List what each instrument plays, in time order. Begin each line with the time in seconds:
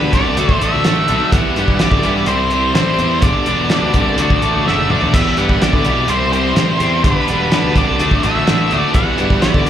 Already playing: overdriven electric guitar G2 D3 G3 B3 D4 G4, lead electric guitar B4
0.02 picked electric bass D2
0.11 picked electric bass C2, overdriven electric guitar G2 D3 G3 B3 D4 G4, lead electric guitar D5, kick, snare, closed hi-hat
0.35 picked electric bass D2, overdriven electric guitar D3 F#3 A3 D4 F#4, closed hi-hat
0.49 kick
0.60 picked electric bass A1, overdriven electric guitar D3 F#3 A3 D4 F#4, lead electric guitar E5, closed hi-hat
0.73 picked electric bass D2
0.84 picked electric bass A1, overdriven electric guitar D3 F#3 A3 D4 F#4, snare, closed hi-hat
1.08 picked electric bass B1, overdriven electric guitar D3 F#3 A3 D4 F#4, closed hi-hat
1.32 picked electric bass E2, overdriven electric guitar E2 B2 E3 G3 B3 E4 G4, lead electric guitar F#5, kick, closed hi-hat
1.56 overdriven electric guitar E2 B2 E3 G3 B3 E4 G4, picked electric bass G2, closed hi-hat
1.68 kick
1.79 overdriven electric guitar E2 B2 E3 G3 B3 E4 G4, lead electric guitar D5, snare, closed hi-hat
1.92 picked electric bass D3, kick
2.03 overdriven electric guitar E2 B2 E3 G3 B3 E4 G4, picked electric bass G2, snare, closed hi-hat
2.26 picked electric bass C2, overdriven electric guitar C3 E3 G3 C4 E4 G4, lead electric guitar C5, closed hi-hat
2.50 overdriven electric guitar C3 E3 G3 C4 E4 G4, closed hi-hat
2.75 picked electric bass A1, overdriven electric guitar C3 E3 G3 C4 E4 G4, lead electric guitar C5, snare, closed hi-hat
2.98 picked electric bass E2, overdriven electric guitar C3 E3 G3 C4 E4 G4, closed hi-hat
3.22 picked electric bass G1, overdriven electric guitar G2 D3 G3 B3 D4 G4, lead electric guitar D5, kick, closed hi-hat
3.46 picked electric bass E1, overdriven electric guitar G2 D3 G3 B3 D4 G4, closed hi-hat
3.70 overdriven electric guitar G2 D3 G3 B3 D4 G4, snare, closed hi-hat
3.82 picked electric bass D2
3.94 picked electric bass C2, overdriven electric guitar G2 D3 G3 B3 D4 G4, kick, closed hi-hat
4.17 picked electric bass D2, overdriven electric guitar D3 F#3 A3 D4 F#4, closed hi-hat
4.30 kick
4.41 picked electric bass A1, overdriven electric guitar D3 F#3 A3 D4 F#4, closed hi-hat
4.54 picked electric bass D2
4.64 picked electric bass F#1, overdriven electric guitar D3 F#3 A3 D4 F#4, lead electric guitar E5, snare
4.79 high tom
4.88 picked electric bass E1, overdriven electric guitar D3 F#3 A3 D4 F#4, lead electric guitar D5, mid tom
5.02 floor tom
5.13 overdriven electric guitar E2 B2 E3 G3 B3 E4 G4, picked electric bass E2, lead electric guitar E5, kick, closed hi-hat, crash
5.37 overdriven electric guitar E2 B2 E3 G3 B3 E4 G4, picked electric bass G2, lead electric guitar F#5, closed hi-hat
5.49 kick
5.61 overdriven electric guitar E2 B2 E3 G3 B3 E4 G4, lead electric guitar D5, snare, closed hi-hat
5.73 picked electric bass D3, kick
5.83 picked electric bass B1, overdriven electric guitar E2 B2 E3 G3 B3 E4 G4, closed hi-hat
6.07 picked electric bass C2, overdriven electric guitar C3 E3 G3 C4 E4 G4, lead electric guitar C5, closed hi-hat
6.31 overdriven electric guitar C3 E3 G3 C4 G4, lead electric guitar C5, closed hi-hat
6.35 overdriven electric guitar E4
6.54 picked electric bass A1, overdriven electric guitar C3 E3 G3 C4 E4 G4, snare, closed hi-hat
6.78 picked electric bass E2, overdriven electric guitar C3 E3 G3 C4 G4, closed hi-hat
6.82 overdriven electric guitar E4
7.03 picked electric bass G1, overdriven electric guitar G2 D3 G3 B3 D4 G4, lead electric guitar C5, kick, closed hi-hat
7.15 lead electric guitar B4
7.27 picked electric bass E1, overdriven electric guitar G2 D3 G3 B3 D4 G4, closed hi-hat
7.50 overdriven electric guitar G2 D3 G3 B3 D4 G4, lead electric guitar B4, snare, closed hi-hat
7.64 picked electric bass D2
7.74 picked electric bass C2, overdriven electric guitar G2 D3 G3 B3 D4 G4, lead electric guitar D5, kick, snare, closed hi-hat
7.98 picked electric bass D2, overdriven electric guitar D3 F#3 A3 D4 F#4, closed hi-hat
8.11 kick
8.22 picked electric bass A1, overdriven electric guitar D3 F#3 A3 D4 F#4, lead electric guitar E5, closed hi-hat
8.36 picked electric bass D2
8.46 picked electric bass A1, overdriven electric guitar D3 F#3 A3 D4 F#4, snare, closed hi-hat
8.69 picked electric bass D2, overdriven electric guitar D3 F#3 A3 D4 F#4, closed hi-hat
8.78 lead electric guitar D5
8.92 overdriven electric guitar E2 B2 E3 G3 B3 E4 G4, picked electric bass E2, lead electric guitar F#5, kick, closed hi-hat
9.16 overdriven electric guitar E2 B2 E3 G3 B3 E4 G4, picked electric bass G2, closed hi-hat
9.30 kick
9.40 overdriven electric guitar E2 B2 E3 G3 B3 E4 G4, lead electric guitar D5, snare, closed hi-hat
9.54 picked electric bass D3, kick
9.63 overdriven electric guitar E2 B2 E3 G3 B3 E4 G4, closed hi-hat